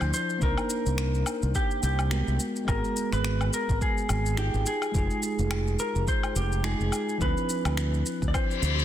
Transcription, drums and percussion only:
0.01 low woodblock, shaker
0.14 shaker
0.30 shaker
0.42 kick, shaker
0.57 low woodblock, shaker
0.70 shaker
0.86 shaker
0.98 finger snap, shaker
1.15 shaker
1.26 low woodblock, shaker
1.43 shaker
1.55 kick, shaker
1.71 shaker
1.83 shaker
1.99 low woodblock, shaker
2.11 finger snap, shaker
2.28 shaker
2.40 shaker
2.56 shaker
2.68 kick, low woodblock, shaker
2.84 shaker
2.97 shaker
3.13 finger snap, shaker
3.25 finger snap, shaker
3.41 low woodblock, shaker
3.53 shaker
3.69 kick, shaker
3.81 kick, shaker
3.98 shaker
4.09 low woodblock, shaker
4.26 shaker
4.37 finger snap, shaker
4.54 shaker
4.66 shaker
4.82 low woodblock, shaker
4.94 kick, shaker
5.10 shaker
5.23 shaker
5.39 shaker
5.51 finger snap, low woodblock, shaker
5.67 shaker
5.79 shaker
5.95 shaker
6.08 kick, shaker
6.23 low woodblock, shaker
6.36 shaker
6.52 shaker
6.64 finger snap, shaker
6.81 shaker
6.92 low woodblock, shaker
7.09 shaker
7.21 kick, shaker
7.37 shaker
7.49 shaker
7.65 finger snap, low woodblock, shaker
7.77 finger snap, shaker
7.94 shaker
8.06 shaker
8.22 kick, shaker
8.34 kick, low woodblock, shaker
8.51 shaker
8.63 shaker
8.79 shaker

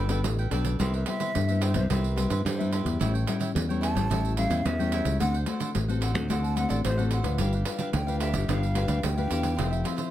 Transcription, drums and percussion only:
0.09 pandeiro
0.24 pandeiro
0.39 pandeiro
0.51 pandeiro
0.65 pandeiro
0.80 pandeiro
0.94 pandeiro
1.06 pandeiro
1.20 pandeiro
1.35 pandeiro
1.49 pandeiro
1.62 pandeiro
1.74 pandeiro
1.90 pandeiro
2.04 pandeiro
2.18 pandeiro
2.30 pandeiro
2.46 pandeiro
2.60 pandeiro
2.73 pandeiro
2.86 pandeiro
3.01 pandeiro
3.15 pandeiro
3.27 pandeiro
3.41 pandeiro
3.56 pandeiro
3.70 pandeiro
3.83 pandeiro
3.97 pandeiro
4.11 pandeiro
4.25 pandeiro
4.37 pandeiro
4.51 pandeiro
4.66 pandeiro
4.80 pandeiro
4.92 pandeiro
5.05 pandeiro
5.20 pandeiro
5.34 pandeiro
5.46 pandeiro
5.60 pandeiro
5.75 pandeiro
5.89 pandeiro
6.02 pandeiro
6.15 pandeiro
6.30 pandeiro
6.44 pandeiro
6.57 pandeiro
6.70 pandeiro
6.85 pandeiro
6.99 pandeiro
7.11 pandeiro
7.24 pandeiro
7.38 pandeiro
7.53 pandeiro
7.65 pandeiro
7.79 pandeiro
7.93 pandeiro
8.08 pandeiro
8.20 pandeiro
8.34 pandeiro
8.49 pandeiro
8.63 pandeiro
8.75 pandeiro
8.88 pandeiro
9.03 pandeiro
9.18 pandeiro
9.31 pandeiro
9.43 pandeiro
9.59 pandeiro
9.73 pandeiro
9.85 pandeiro
9.98 pandeiro

